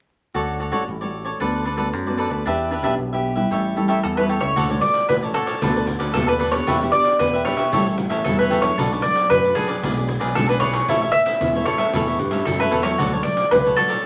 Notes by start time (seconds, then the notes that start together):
0.34 D2 D3 A3 C#4 F#4 A4 C#5 D5
0.60 F#4 A4 C#5 D5
0.72 A1 A3 C#4 F#4 A4 C#5 D5
0.88 A1 A2
1.01 A3 C#4 F#4 A4 C#5 D5
1.24 A4 C#5 D5
1.40 D2 D3 A3 B3 D4 F#4 A4 B4 D5
1.65 D4 A4 B4 D5
1.77 A3 B3 D4 F#4 A4 B4 D5
1.93 F#2 D3
2.07 A3 B3 F#4 A4 B4 D5
2.18 D4 A4 B4 D5
2.30 D2 A4 B4 D5
2.45 E2 E3 B3 D4 G4 B4 E5
2.71 D4 G4 B4 E5
2.83 B1 B3 D4 G4 B4 E5
2.98 B1 B2
3.12 B3 D4 G4 B4 E5
3.35 G3 C#4 E4 G4 B4 E5
3.51 A1 A2 G4 A4 C#5 E5
3.76 G3 C#4 E4 G4 A4 C#5 E5
3.88 G4 A4 C#5 E5
4.03 E2 E3 A4
4.17 G3 C#4 E4 A4 B4 C#5 E5
4.29 G4 A4 C#5 E5
4.41 C#2 A3 C#4 F#4 A4 C#5 E5
4.56 D2 D3 F#4 A4 C#5 D5, pandeiro
4.70 A3 C#4 F#4 A4 C#5 D5, pandeiro
4.81 A3 C#4 F#4 D5, muted cavaquinho stroke, pandeiro
4.94 pandeiro
5.09 A1 A2 A3 C#4 F#4 B4, pandeiro
5.22 A4 C#5 D5, pandeiro
5.34 A3 C#4 F#4 A4 C#5 D5, pandeiro
5.46 A4 C#5 D5, pandeiro
5.61 D2 D3 A3 B3 D4 F#4 A4 B4 D5, pandeiro
5.76 A4 B4 D5, pandeiro
5.86 muted cavaquinho stroke, pandeiro
5.99 D2 A4 B4 D5, pandeiro
6.14 D#2 D3 A3 B3 F#4 A4, pandeiro
6.28 A4 B4 D5, pandeiro
6.39 D4 A4 B4 D5, pandeiro
6.51 B3 D4 G4 A4 B4 C#5 D5, pandeiro
6.67 E2 E3 D4 G4 B4 E5, pandeiro
6.81 B3 D4 G4 B4 E5, pandeiro
6.92 B3 D4 G4 D5, muted cavaquinho stroke, pandeiro
7.05 pandeiro
7.19 E2 B2 B4, pandeiro
7.34 G4 B4 E5, pandeiro
7.44 B3 D4 G4 B4 C#5 E5, pandeiro
7.57 G4 B4 E5, pandeiro
7.72 A1 A2 G3 C#4 E4 G4 A4 C#5 E5, pandeiro
7.87 A4 C#5, pandeiro
7.98 muted cavaquinho stroke, pandeiro
8.09 A1 A4 C#5 E5, pandeiro
8.24 E2 E3 G3 C#4 E4 A4, pandeiro
8.39 A4 B4 C#5 E5, pandeiro
8.50 G4 A4 C#5 E5, pandeiro
8.62 F#3 A3 D4 A4 C#5 E5, pandeiro
8.77 B1 B2 D4 A4 B4 D5, pandeiro
8.92 F#3 A3 D4 A4 B4 D5, pandeiro
9.02 F#3 A3 D4 D5, muted cavaquinho stroke, pandeiro
9.16 pandeiro
9.30 F#2 B4, pandeiro
9.44 A4 B4 D5, pandeiro
9.55 F#3 A3 D4 G#4 A4 B4 D5, pandeiro
9.68 A4 B4 D5, pandeiro
9.83 B1 B2 E3 G#3 D4 E4 G#4 B4 D5, pandeiro
9.97 G#4 B4 D5, pandeiro
10.08 muted cavaquinho stroke, pandeiro
10.20 B1 G#4 B4 D5, pandeiro
10.35 B1 B2 E3 G#3 D4 A4, pandeiro
10.49 G#4 B4 D5, pandeiro
10.60 E4 G#4 B4 C#5 D5, pandeiro
10.72 E3 A3 C#4 G#4 B4 D5, pandeiro
10.88 A1 A2 E4 A4 C#5 E5, pandeiro
11.02 A4 C#5 E5, pandeiro
11.12 E5, muted cavaquinho stroke, pandeiro
11.25 E3 A3 C#4, pandeiro
11.41 E2 E3, pandeiro
11.55 E3 A3 C#4 A4 C#5 E5, pandeiro
11.65 E4 A4 C#5 E5, pandeiro
11.78 E3 A3 C#4 A4 C#5 E5, pandeiro
11.93 E2 A2 E3 A3 C#4 E4 A4 C#5 E5, pandeiro
12.07 A4 C#5 E5, pandeiro
12.19 G2, muted cavaquinho stroke, pandeiro
12.31 E3 A3 C#4 A4 C#5 E5, pandeiro
12.45 F#2 E3 A4, pandeiro
12.60 E3 A3 C#4 A4 B4 C#5 E5, pandeiro
12.71 E2 E4 A4 C#5 E5, pandeiro
12.83 F#3 A3 C#4 A4 C#5 E5, pandeiro
12.98 D2 D3 F#4 A4 C#5 D5, pandeiro
13.12 F#3 A3 C#4 A4 C#5 D5, pandeiro
13.23 F#3 A3 C#4 D5, muted cavaquinho stroke, pandeiro
13.37 pandeiro
13.51 C#2 A2 F#3 A3 C#4 B4, pandeiro
13.65 A4 C#5 D5, pandeiro
13.76 F#3 A3 C#4 F#4 A4 C#5 D5, pandeiro
13.88 A4 C#5 D5, pandeiro